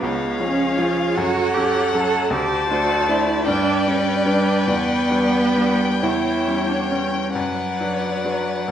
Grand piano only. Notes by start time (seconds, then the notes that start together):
0.03 C#2
0.40 F3 C#4 G#4
0.79 F3 C#4 G#4
1.17 F#2
1.56 F#3 C#4 A4
1.94 F#3 C#4 A4
2.30 D2
2.70 A3 D4 C5
3.08 A3 D4 C5
3.47 G2
3.87 G3 D4 B4
4.25 G3 D4 B4
4.67 E2
5.10 G3 D4 B4
5.56 G3 D4 B4
6.03 E2
6.47 G3 C#4 C#5
6.91 G3 C#4 C#5
7.35 F#2
7.80 F#3 D4 B4
8.24 F#3 D4 B4
8.68 F#2